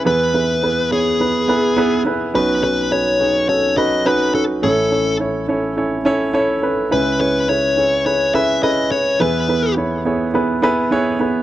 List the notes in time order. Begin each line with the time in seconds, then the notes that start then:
0.05 E2 E3 B3 E4 G#4 B4
0.34 B3 E4 G#4 B4
0.62 B3 E4 G#4 B4
0.91 B3 E4 G#4 C#5
1.20 B3 E4 G#4 B4
1.48 B3 E4 G#4 B4
1.76 B3 E4 G#4 B4
2.05 B3 E4 G#4 B4
2.34 B1 B2 C#4 D#4 F#4 B4
2.62 C#4 D#4 F#4 B4
2.91 C#4 D#4 F#4 B4 C#5
3.19 C#4 D#4 F#4 G#4
3.48 C#4 D#4 F#4 A4 C#5
3.77 C#4 D#4 F#4 B4 D#5
4.05 C#4 D#4 F#4 B4
4.34 C#4 D#4 F#4 A4 B4
4.63 A1 A2 C#4 E4 A4 C#5
4.91 C#4 E4 A4 C#5
5.20 C#4 E4 A4 C#5
5.48 C#4 E4 A4 C#5
5.77 C#4 E4 A4 C#5
6.05 C#4 E4 A4 C#5
6.33 C#4 E4 A4 C#5 E5
6.62 C#4 E4 A4 B4
6.91 C#2 C#3 C#4 E4 G#4 B4
7.19 C#4 E4 G#4 B4 C#5
7.48 C#4 E4 G#4 B4 C#5
7.77 C#4 E4 G#4 C#5
8.05 C#4 E4 G#4 B4 C#5
8.34 C#4 E4 G#4 B4 E5
8.62 C#4 E4 G#4 B4 D#5
8.91 C#4 E4 G#4 C#5
9.20 E2 E3 B3 E4 G#4 B4
9.48 B3 E4 G#4 B4
9.77 B3 E4 G#4 C#5
10.05 B3 E4 G#4 C#5
10.34 B3 E4 G#4 B4
10.62 B3 E4 G#4 B4
10.91 B3 E4 G#4 C#5
11.19 B3 E4 G#4 B4